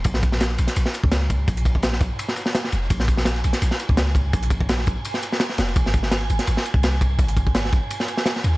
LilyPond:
<<
  \new Staff \with { instrumentName = "Synth texture" } { \time 4/4 \key bes \minor \tempo 4 = 168 aes''1~ | aes''1~ | aes''1~ | aes''1~ |
aes''1~ | aes''1 | }
  \new Staff \with { instrumentName = "808-style bass" } { \clef bass \time 4/4 \key bes \minor bes,,4. bes,,16 r16 bes,,16 r8 des,4~ des,16 | bes,,4. bes,,16 r4. r16 f,,8 | bes,,4. bes,,16 r16 bes,,16 r8 des,4~ des,16 | bes,,4. bes,,16 r4. r16 f,,8 |
aes,,4. aes,,16 r16 aes,,16 r8 c,4~ c,16 | aes,,4. aes,,16 r4. r16 ees,8 | }
  \new DrumStaff \with { instrumentName = "Drums" } \drummode { \time 4/4 <bd cymr tamb>16 sn16 <bd cymr tamb>16 sn16 <cymr sn tamb>16 cymr16 <cymr tamb>16 <hh sn>16 <cymr tamb>16 sn16 <cymr tamb>16 bd16 <cymr sn tamb>8 <bd cymr tamb>8 | <bd cymr tamb>16 <hh cymr>16 <bd cymr tamb>16 bd16 <cymr sn tamb>16 sn16 <bd cymr tamb>8 <cymr tamb>16 sn16 <cymr tamb>16 sn16 <cymr sn tamb>16 sn16 <cymr tamb>16 sn16 | <bd cymr tamb>16 sn16 <bd cymr tamb>16 sn16 <cymr sn tamb>16 cymr16 <cymr tamb>16 <hh sn>16 <cymr tamb>16 sn16 <cymr tamb>16 bd16 <cymr sn tamb>8 <bd cymr tamb>8 | <bd cymr tamb>16 <hh cymr>16 <bd cymr tamb>16 bd16 <cymr sn tamb>16 sn16 <bd cymr tamb>8 <cymr tamb>16 sn16 <cymr tamb>16 sn16 <cymr sn tamb>16 sn16 <cymr sn tamb>16 cymr16 |
<bd cymr tamb>16 sn16 <bd cymr tamb>16 sn16 <cymr sn tamb>16 cymr16 <cymr tamb>16 <hh sn>16 <cymr tamb>16 sn16 <cymr tamb>16 bd16 <cymr sn tamb>8 <bd cymr tamb>8 | <bd cymr tamb>16 <hh cymr>16 <bd cymr tamb>16 bd16 <cymr sn tamb>16 sn16 <bd cymr tamb>8 <cymr tamb>16 sn16 <cymr tamb>16 sn16 <cymr sn tamb>16 sn16 <cymr tamb>16 sn16 | }
>>